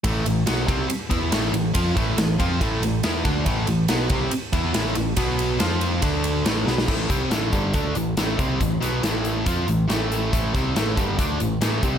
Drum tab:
CC |----------------|----------------|----------------|----------------|
RD |x-x-x-x-x-x-x-x-|x-x-x-x-x-x-x-x-|x-x-x-x-x-x-x-x-|x-x-x-x-x-x-x---|
HH |----------------|----------------|----------------|----------------|
SD |----o-------o---|----o-------o---|----o-------o---|----o-------o-oo|
BD |o-----o---o-----|o-o---o-o-----o-|o-----o---o-----|o-------o-------|

CC |x---------------|----------------|----------------|
RD |----------------|----------------|----------------|
HH |--x-x-x-x-x-x-x-|x-x-x-x-x-x-x-x-|x-x-x-x-x-x-x-x-|
SD |----o-------o---|--o-o-------o---|--o-o-------o---|
BD |o-o---o-o-----o-|o-------o-------|o-o---o-o-----o-|